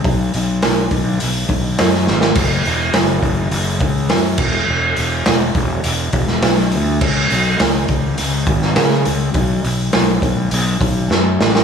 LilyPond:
<<
  \new Staff \with { instrumentName = "Fingered electric bass" } { \clef bass \time 4/4 \key b \dorian \tempo 4 = 103 b,,8 b,,8 b,,8 b,,8 b,,8 b,,8 fis,8 gis,,8 | fis,,8 e,,8 fis,,8 fis,,8 fis,,8 cis,8 fis,8 e,,8 | e,,8 e,,8 e,,8 e,,8 e,,8 e,,8 b,,8 d,8 | cis,8 b,,8 cis,8 cis,8 cis,8 gis,,8 cis8 cis,8 |
b,,8 b,,8 b,,8 b,,8 b,,8 b,,8 fis,8 a,,8 | }
  \new DrumStaff \with { instrumentName = "Drums" } \drummode { \time 4/4 <hho bd>8 hho8 <hho sn>8 <hho bd>8 hho8 <hho bd>8 <hho sn>16 sn16 sn16 sn16 | <cymc hho bd>8 hho8 <hho sn>8 <hho bd>8 hho8 <hho bd>8 <hho sn>8 <cymc bd>8 | r8 hho8 <hho sn>8 <hho bd>8 hho8 <hho bd>16 sn16 <hho sn>16 sn16 hho8 | <cymc bd>8 hho8 <hho sn>8 <hho bd>8 hho8 <hho bd>16 sn16 <hho sn>16 sn16 hho8 |
<hho bd>8 hho8 <hho sn>8 <hho bd>8 hho8 <hho bd>8 sn8 sn16 sn16 | }
>>